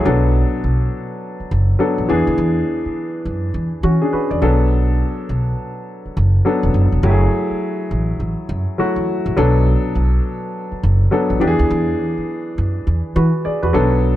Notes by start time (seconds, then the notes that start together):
0.05 B1 F#3 B3 D4 A4
0.64 B1
1.40 muted upright bass stroke
1.51 F#1
1.79 F#3 B3 D4 A4
1.98 A1
2.09 E2 E3 B3 D4 G#4
2.27 D2
2.38 E2
2.85 muted upright bass stroke
3.25 F#2
3.54 E2
3.83 E3 C#4 F#4
4.02 D4 G#4
4.13 F#4 B4, muted upright bass stroke
4.30 E2 G#4 D5
4.42 B1 F#3 B3 D4 A4
5.29 B1
6.06 muted upright bass stroke
6.17 F#1
6.45 F#3 B3 D4 A4
6.63 E1
6.74 F#1
6.92 E1
7.03 F#1 F#3 A3 E4 G4
7.11 G#4
7.50 muted upright bass stroke
7.91 A1
8.20 A1
8.49 F#2
8.78 F#3 A3 E4 F#4, muted upright bass stroke
8.96 E2
9.26 A1
9.37 B1 F#3 B3 D4 A4
9.95 B1
10.72 muted upright bass stroke
10.83 F#1
11.11 F#3 B3 D4 A4
11.30 A1
11.40 E2 E3 B3 D4 G4
11.47 G#4
11.59 D2
11.71 E2
12.18 muted upright bass stroke
12.58 F#2
12.87 E2
13.16 E3 F#4 B4
13.45 G#4 D5, muted upright bass stroke
13.62 E2 F#4 B4
13.73 B1 F#3 B3 D4 A4